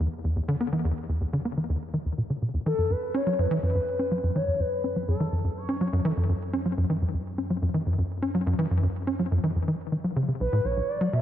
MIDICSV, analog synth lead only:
0, 0, Header, 1, 2, 480
1, 0, Start_track
1, 0, Tempo, 483871
1, 721, Time_signature, 4, 2, 24, 8
1, 11126, End_track
2, 0, Start_track
2, 0, Title_t, "Analog synth lead"
2, 0, Program_c, 0, 81
2, 2646, Note_on_c, 0, 69, 96
2, 2885, Note_on_c, 0, 71, 96
2, 2900, Note_off_c, 0, 69, 0
2, 3125, Note_on_c, 0, 73, 110
2, 3140, Note_off_c, 0, 71, 0
2, 3365, Note_on_c, 0, 71, 98
2, 3380, Note_off_c, 0, 73, 0
2, 3598, Note_off_c, 0, 71, 0
2, 3604, Note_on_c, 0, 71, 104
2, 4324, Note_on_c, 0, 73, 102
2, 4339, Note_off_c, 0, 71, 0
2, 4562, Note_on_c, 0, 71, 99
2, 4577, Note_off_c, 0, 73, 0
2, 5035, Note_off_c, 0, 71, 0
2, 5041, Note_on_c, 0, 69, 91
2, 5487, Note_off_c, 0, 69, 0
2, 5522, Note_on_c, 0, 73, 100
2, 6002, Note_on_c, 0, 69, 79
2, 6017, Note_off_c, 0, 73, 0
2, 6361, Note_off_c, 0, 69, 0
2, 10323, Note_on_c, 0, 71, 96
2, 10561, Note_on_c, 0, 73, 97
2, 10576, Note_off_c, 0, 71, 0
2, 10804, Note_on_c, 0, 74, 100
2, 10819, Note_off_c, 0, 73, 0
2, 11042, Note_on_c, 0, 76, 101
2, 11057, Note_off_c, 0, 74, 0
2, 11126, Note_off_c, 0, 76, 0
2, 11126, End_track
0, 0, End_of_file